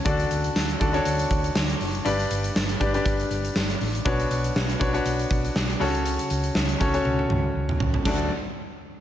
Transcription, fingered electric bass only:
0.06 0.24 D2 loud
0.31 0.49 D2 medium
0.56 0.74 D2 medium
0.81 0.99 D2 loud
1.06 1.24 D2 loud
1.31 1.49 D2 loud
1.56 1.74 D2 medium
1.80 1.99 F#1 medium
2.05 2.23 G1 loud
2.31 2.49 G1 medium
2.55 2.73 G1 medium
2.81 2.99 G1 medium
3.06 3.24 G1 loud
3.30 3.49 G1 medium
3.56 3.74 G1 loud
3.81 3.99 A1 medium
4.06 4.24 B1 loud
4.31 4.49 B1 medium
4.56 4.74 B1 loud
4.81 4.99 B1 loud
5.05 5.23 B1 loud
5.31 5.49 B1 medium
5.56 5.74 B1 medium
5.81 6.17 C#2 loud
6.31 6.49 C#2 medium
6.55 6.73 C#2 loud
6.81 6.99 C#2 loud
7.05 7.23 C#2 loud
7.30 7.48 C#2 loud
7.55 7.73 C#2 medium
7.80 7.98 C#2 medium
8.06 8.29 D2 medium

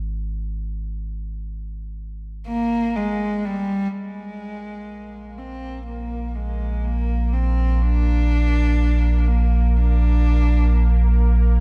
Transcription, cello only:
2.48 2.97 A#3 medium
2.95 3.46 G#3 medium
3.45 3.93 G3 medium
3.92 5.39 G#3 loud
5.38 5.86 C4 medium
5.87 6.37 A#3 medium
6.36 6.86 G#3 medium
6.84 7.34 A#3 medium
7.33 7.83 C4 medium
7.82 9.29 D4 loud
9.28 9.78 A#3 medium
9.76 11.20 D4 medium

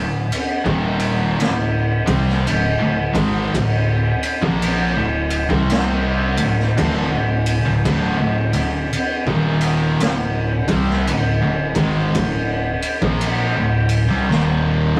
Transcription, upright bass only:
0.00 0.30 D1 medium
0.65 1.35 D#1 loud
1.41 2.04 D1 medium
2.07 2.44 C2 loud
2.48 2.79 D1 medium
2.82 3.13 D1 medium
3.14 3.52 G#1 loud
3.54 4.19 D1 medium
4.42 4.93 A#1 loud
4.97 5.47 D1 medium
5.50 6.34 C2 loud
6.39 6.76 D1 medium
6.78 7.09 D1 loud
7.12 7.62 D1 medium
7.66 7.85 D1 medium
7.85 8.17 D1 loud
8.19 8.51 D1 medium
8.54 8.91 D1 medium
9.27 9.96 D#1 loud
10.01 10.64 D1 medium
10.68 11.05 C2 loud
11.08 11.40 D1 medium
11.43 11.74 D1 medium
11.75 12.12 G#1 loud
12.15 12.79 D1 medium
13.02 13.52 A#1 loud
13.56 14.06 D1 medium
14.11 14.29 C2 loud
14.30 14.94 D#1 loud

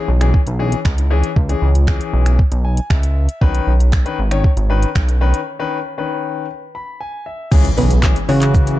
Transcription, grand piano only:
0.21 0.39 E3 medium
0.21 0.39 C#4 medium
0.21 0.39 G#4 loud
0.59 0.77 E3 medium
0.59 0.77 C#4 medium
0.59 0.77 G#4 loud
0.98 1.04 C#4 medium
0.98 1.04 E4 medium
1.11 1.28 E3 loud
1.11 1.28 C#4 medium
1.11 1.29 G#4 loud
1.49 1.67 E3 medium
1.49 1.67 C#4 medium
1.49 1.67 G#4 loud
1.87 2.35 E3 medium
1.87 2.35 C#4 medium
1.87 2.35 G#4 medium
2.65 2.88 G#5 medium
2.90 3.38 E5 medium
3.41 3.71 D#3 loud
3.41 3.71 C#4 medium
3.41 3.71 B4 loud
4.05 4.17 D#3 medium
4.05 4.17 C#4 medium
4.05 4.18 B4 loud
4.31 4.49 D#3 medium
4.31 4.49 C#4 medium
4.31 4.49 C#5 loud
4.70 4.87 D#3 loud
4.70 4.87 C#4 medium
4.70 4.88 B4 loud
5.08 5.14 C#4 medium
5.08 5.14 B4 medium
5.21 5.39 D#3 medium
5.21 5.39 C#4 medium
5.21 5.39 B4 loud
5.59 5.77 D#3 medium
5.59 5.77 C#4 medium
5.59 5.77 B4 loud
5.98 6.45 D#3 medium
5.98 6.45 C#4 medium
5.98 6.45 B4 medium
6.75 6.99 B5 medium
7.01 7.24 G#5 medium
7.26 7.50 E5 medium
7.52 7.63 E3 loud
7.52 7.64 G#3 loud
7.52 7.64 C#4 loud
7.52 7.64 G#4 loud
7.77 7.89 E3 medium
7.77 7.89 G#3 medium
7.77 7.89 C#4 medium
7.77 7.89 G#4 medium
8.03 8.15 E3 loud
8.03 8.15 G#3 medium
8.03 8.15 C#4 medium
8.03 8.15 G#4 loud
8.29 8.76 E3 medium
8.29 8.76 G#3 medium
8.29 8.76 C#4 medium
8.29 8.76 F#4 loud

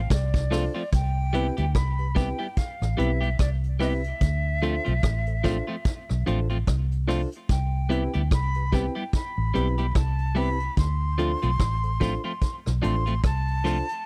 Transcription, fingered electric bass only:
0.11 0.68 C2 loud
0.93 1.50 C2 loud
1.58 1.73 D2 medium
1.76 2.32 C2 medium
2.82 2.97 A1 medium
2.99 3.35 B1 medium
3.40 4.12 C2 medium
4.22 4.78 D2 medium
4.88 5.02 B1 medium
5.04 5.60 A1 medium
6.11 6.25 B1 medium
6.28 6.63 A1 medium
6.68 7.25 C2 loud
7.50 8.07 C2 loud
8.15 8.30 D2 medium
8.32 8.88 C2 medium
9.38 9.53 A1 medium
9.56 9.91 B1 medium
9.96 10.68 C2 loud
10.78 11.34 D2 medium
11.43 11.58 B1 medium
11.60 12.17 A1 medium
12.67 12.82 B1 medium
12.85 13.20 A1 loud
13.24 13.81 C2 medium

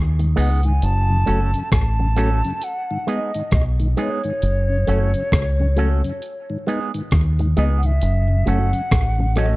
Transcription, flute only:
0.39 0.67 F#5 medium
0.66 0.85 G#5 medium
0.84 1.72 A5 loud
1.73 2.65 A5 medium
2.64 3.10 F#5 medium
3.08 3.53 D#5 medium
3.54 3.64 D#5 medium
4.00 6.64 C#5 medium
7.58 7.64 D#5 medium
7.77 7.88 F#5 medium
7.86 8.49 E5 loud
8.48 9.39 F#5 loud
9.37 9.56 D#5 medium

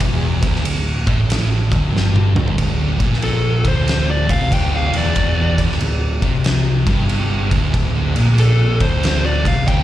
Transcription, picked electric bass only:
0.00 0.38 E1 medium
0.43 0.64 D1 medium
0.66 1.05 D1 medium
1.07 1.68 A1 loud
1.72 1.93 D1 loud
1.94 2.33 G1 medium
2.35 2.56 D1 medium
2.58 2.98 D1 medium
3.00 3.61 A#1 medium
3.65 4.25 D1 loud
4.30 4.50 C2 loud
4.52 4.91 D1 loud
4.93 5.54 E1 medium
5.59 5.79 D1 medium
5.80 6.19 D1 medium
6.23 6.83 C2 medium
6.87 7.47 G1 medium
7.52 7.73 D1 medium
7.74 8.13 D1 medium
8.16 8.77 A#1 medium
8.81 9.41 D1 loud
9.45 9.66 C2 medium
9.68 9.83 D1 loud

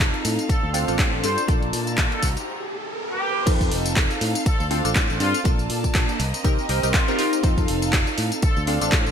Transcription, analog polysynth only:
0.00 0.48 C4 medium
0.00 0.48 D#4 medium
0.00 0.48 F4 medium
0.00 0.48 A4 loud
0.73 0.85 C4 medium
0.73 0.86 D4 medium
0.73 0.86 F4 medium
0.73 0.86 A4 medium
0.88 1.21 C4 medium
0.88 1.21 D4 medium
0.88 1.21 F4 medium
0.88 1.21 A4 medium
1.23 1.41 C4 medium
1.23 1.41 D4 medium
1.23 1.41 F4 medium
1.23 1.41 A4 medium
1.47 2.21 A#3 medium
1.47 2.21 D4 medium
1.47 2.22 F4 medium
1.47 2.22 A4 loud
3.46 4.44 C4 medium
3.46 4.45 D#4 medium
3.46 4.45 F4 medium
3.46 4.45 A4 loud
4.70 4.82 C4 medium
4.70 4.82 D4 medium
4.70 4.82 F4 medium
4.70 4.83 A4 loud
4.84 5.18 C4 medium
4.84 5.18 D4 medium
4.84 5.18 F4 medium
4.84 5.18 A4 medium
5.20 5.38 C4 medium
5.20 5.38 D4 medium
5.20 5.38 F4 medium
5.20 5.38 A4 medium
5.44 6.18 A#3 medium
5.44 6.18 D4 medium
5.44 6.18 F4 medium
5.44 6.19 A4 medium
6.44 6.67 C4 medium
6.44 6.67 D#4 medium
6.44 6.67 G4 medium
6.44 6.67 A#4 loud
6.69 6.80 C4 medium
6.69 6.80 D#4 medium
6.69 6.80 G4 medium
6.69 6.80 A#4 medium
6.83 7.05 C4 medium
6.83 7.05 D#4 medium
6.83 7.05 G4 medium
6.83 7.05 A#4 medium
7.08 7.17 C4 loud
7.08 7.17 D#4 medium
7.08 7.17 G4 medium
7.08 7.17 A#4 loud
7.18 7.41 C4 loud
7.18 7.41 D#4 medium
7.18 7.41 G4 medium
7.18 7.41 A#4 loud
7.43 8.41 C4 medium
7.43 8.41 D#4 medium
7.43 8.42 F4 medium
7.43 8.42 A4 loud
8.67 8.79 C4 medium
8.67 8.79 D4 medium
8.67 8.79 F4 medium
8.67 8.79 A4 loud
8.81 9.11 C4 medium
8.81 9.11 D4 medium
8.81 9.11 F4 medium
8.81 9.11 A4 medium

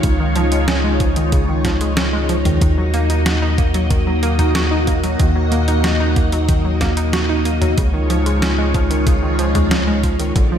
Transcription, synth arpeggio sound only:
0.04 0.19 C#3 medium
0.20 0.32 D#3 medium
0.36 0.43 F3 loud
0.52 0.65 G#3 medium
0.68 0.81 C#4 medium
0.84 0.97 G#3 loud
1.00 1.16 F3 medium
1.17 1.29 D#3 medium
1.33 1.48 C#3 medium
1.49 1.61 D#3 medium
1.65 1.72 F3 loud
1.81 1.94 G#3 medium
1.97 2.10 C#4 medium
2.13 2.26 G#3 loud
2.29 2.45 F3 medium
2.45 2.58 D#3 medium
2.62 2.77 D#3 medium
2.78 2.90 F#3 medium
2.94 3.01 A#3 loud
3.10 3.23 D#4 medium
3.26 3.39 F#4 medium
3.42 3.55 D#4 loud
3.58 3.74 A#3 medium
3.75 3.87 F#3 medium
3.91 4.06 D#3 medium
4.07 4.19 F#3 medium
4.23 4.30 A#3 loud
4.39 4.52 D#4 medium
4.55 4.68 F#4 medium
4.71 4.84 D#4 loud
4.87 5.03 A#3 medium
5.03 5.16 F#3 medium
5.20 5.35 D#3 medium
5.36 5.48 F#3 medium
5.52 5.59 A#3 loud
5.68 5.81 D#4 medium
5.84 5.97 F#4 medium
6.00 6.13 D#4 loud
6.17 6.32 A#3 medium
6.33 6.45 F#3 medium
6.49 6.64 D#3 medium
6.65 6.77 F#3 medium
6.81 6.88 A#3 loud
6.97 7.10 D#4 medium
7.13 7.26 F#4 medium
7.29 7.42 D#4 loud
7.45 7.61 A#3 medium
7.61 7.74 F#3 medium
7.77 7.93 C#3 medium
7.94 8.06 D#3 medium
8.10 8.17 F3 loud
8.26 8.39 G#3 medium
8.42 8.55 C#4 medium
8.58 8.71 G#3 loud
8.74 8.90 F3 medium
8.90 9.03 D#3 medium
9.06 9.22 C#3 medium
9.23 9.35 D#3 medium
9.39 9.46 F3 loud
9.55 9.68 G#3 medium
9.71 9.84 C#4 medium
9.87 10.00 G#3 loud
10.03 10.19 F3 medium
10.20 10.32 D#3 medium
10.36 10.51 D3 medium
10.52 10.58 F3 medium

